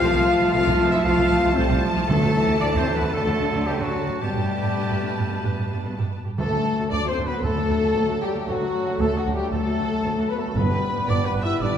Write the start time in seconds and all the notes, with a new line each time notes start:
Already playing: F4 C5 F5
0.00 C2 F3 A3 A5
0.14 C2 F4
0.40 C2 F4
0.51 C2 A3 F4 F5
0.66 C2 F4
0.78 C2 C4
0.91 C2 E4 F4 E5
1.03 C2 A3 F4 F5
1.18 C2 F4
1.31 C2 C4
1.44 C2 F4
1.54 C2 G3 A3 C4 C5
1.69 C2 F4
1.84 F3
1.96 C2 F4
2.07 D2 D3 F#3 A3 A4
2.22 D2 F#4
2.36 E3
2.48 D2 F#4
2.59 D2 F#3 A3 D4 D5
2.75 D2 F#4 C5
2.79 C4
2.86 D2 D4
2.94 B3 B4
3.01 D2 F#4
3.13 D2 D3 F#3 A3 A4
3.26 D2 F#4
3.40 D2 D4
3.53 D2 F#4
3.64 D2 G3 A3 G4
3.77 D2 F#3 F#4
4.07 D2 F#4
4.20 G2 B2 G3 A3 B3 G4 B4 A5
4.35 G2 G4
4.62 G2 G4
4.76 G2 B3
4.89 G2 G4
5.03 G2 D4
5.17 G2 G4
5.30 G2 B3
5.43 G2 G4
5.58 G2 D4
5.71 G2 G4
5.85 G2 B3
5.99 G2 G4
6.25 G2 G4
6.38 D2 D3 F#3 A3 A4 A5
6.52 D2 F#4
6.78 D2 F#4
6.90 D2 A3 D4 D5 D6
7.05 D2 F#4 C5 C6
7.09 C4 C5
7.17 D2 D4
7.25 B3 B4 B5
7.30 D2 F#4
7.43 D2 A3 A4 A5
7.56 D2 F#4
7.69 D2 D4
7.83 D2 F#4
7.95 D2 A3
8.09 D2 F#4
8.21 G3 G4 G5
8.34 D2 F#4
8.46 D2 F#3 A3 F#4 F#5
8.61 D2 F#4
8.87 D2 F#4
8.98 D2 A3 A4 A5
9.12 D2 F#3 F#4
9.17 F#4 F#5
9.26 D2 D4
9.33 G3 G4 G5
9.39 D2 F#4
9.49 D2 A3 A4 A5
9.66 D2 F#4
9.78 D2 D4
9.92 D2 F#4
10.04 D2 A3
10.18 D2 F#4
10.28 B3 B4 B5
10.36 A3 A4 A5
10.44 D2 F#4
10.54 G1 G2 G3 B3 B4 B5
10.70 G2 G4
10.96 G2 G4
11.06 G1 G2 B3 D4 D5 D6
11.22 G2 B3 G4 B4 B5
11.35 G1 G2 D4
11.40 E5
11.44 G2 E4 E6
11.49 G4
11.57 G1 G2 D5 D6
11.61 B3 D4 D5
11.74 G2